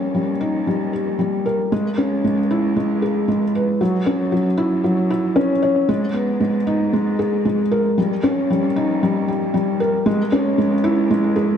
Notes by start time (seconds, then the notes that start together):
Already playing: D#2 C#4
0.15 G3
0.41 D#4
0.67 G3
0.93 G4
1.19 G3
1.46 A#4
1.71 C#2 G#3
1.98 C#4
2.24 G#3
2.51 E4
2.76 G#3
3.02 G#4
3.28 G#3
3.55 B4
3.80 F#2 F#3
4.06 C#4
4.32 F#3
4.57 E4
4.84 F#3
5.10 E4
5.36 C#4
5.62 C#5
5.88 G#2 G#3
6.14 B3
6.40 G#3
6.67 D#4
6.93 G#3
7.19 G#4
7.45 G#3
7.71 A#4
7.97 D#2 G3
8.23 C#4
8.50 G3
8.76 D#4
9.03 G3
9.28 G4
9.54 G3
9.80 A#4
10.06 C#2 G#3
10.32 C#4
10.58 G#3
10.84 E4
11.10 G#3
11.36 G#4